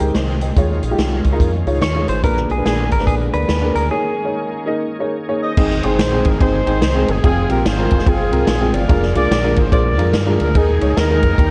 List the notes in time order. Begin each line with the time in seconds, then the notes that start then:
Already playing: D#3 G#3 C4 G4
0.00 C#2 G#3 D#4 G4 A#4
0.15 C2 C5 D#5, snare, closed hi-hat
0.41 D#5 G5, closed hi-hat
0.56 D#2 D#3 G#3 C#4 D#4 F4 C#5, kick, closed hi-hat
0.83 A#1, closed hi-hat
0.91 G#3 D#4 F4 G4
0.99 C2, snare, closed hi-hat
1.24 C#2, kick, closed hi-hat
1.32 G#3 D#4 F4 A#4
1.40 F2, kick, closed hi-hat
1.66 C#2 G#3 D#4 F4 C#5, closed hi-hat
1.81 D#2 C#5, snare, closed hi-hat
1.95 G#3 D#4 F4 C#5
2.08 G#1 C5, closed hi-hat
2.23 A#1 A#2 D3 G#3 A#3 B3 D4 G#4 A#4 B4, kick, closed hi-hat
2.37 snare
2.49 B1 G#4, closed hi-hat
2.57 A#3 D4 G#4 B4
2.65 A#1 G#4, snare, closed hi-hat
2.91 G#1 A#4, kick, closed hi-hat
2.99 A#3 D4 G#4 B4, snare
3.07 A#1 G#4, kick, closed hi-hat
3.33 D2 A#3 D4 G#4 B4 D5, closed hi-hat
3.48 D#2, snare, closed hi-hat
3.61 A#3 D4 G#4 A#4
3.75 D2 A#4, closed hi-hat
3.90 D#3 A#3 C#4 D#4 G#4 C#5
4.24 A#3 D#4 G#4 C#5
4.66 A#3 D#4 G#4 D#5
4.99 A#3 D#4 G#4 C#5
5.28 A#3 D#4 G#4 C#5
5.42 G#4 C5 D#5
5.57 G#1 G#2 D#3 G#3 C4 D#4 G#4, kick, crash
5.71 snare
5.83 G1 C4 D#4 G#4 C5, ride
5.99 A#1, snare, ride
6.12 C4 D#4 G#4
6.25 G#1 A#4, kick, ride
6.41 G1 C4 D#4 G#4 C5, kick, ride
6.66 G#1 C4 D#4 G#4, ride
6.82 C2, snare, ride
6.95 C4 D#4 G#4
7.08 G1 G#4, ride
7.23 F1 F3 C4 F4 G#4, kick, ride
7.49 A#1 C4 F4 G4 A#4, ride
7.65 G#1 F4 G#4 C5, snare, ride
7.78 C4 F4 A#4
7.91 F1, kick, ride
7.99 snare
8.06 G1 C4 F4 G#4, kick, ride
8.32 C2 C4 F4 A#4, ride
8.47 A#1, snare, ride
8.61 C4 F4 G#4
8.74 G1 G#4 D5 F5, ride
8.88 F1 F3 G#3 A#3 D4 F4 A#4, kick, ride
9.03 snare
9.15 C2 G#3 A#3 D4 F4 G#4 A#4 D5, ride
9.31 A#1, snare, ride
9.43 G#3 A#3 D4 F4 A#4
9.56 G#1 C5, kick, ride
9.72 A#1 G#3 A#3 D4 F4 G#4 A#4 C5 D5, kick, ride
9.98 F2 G#3 A#3 D4 F4 A#4, ride
10.13 G2, snare, ride
10.26 G#3 A#3 D4 F4 A#4
10.40 D2 A#4, ride
10.55 D#2 D#3 G#3 D#4 G#4 A#4, kick, ride
10.81 C#2 D#4 G#4 C#5, ride
10.97 D#2 D#4 A#4, snare, ride
11.10 D#4 G#4 A#4
11.23 F2, kick, ride
11.38 D#2 D#3 G3 A#3 D#4 G4 A#4, kick, ride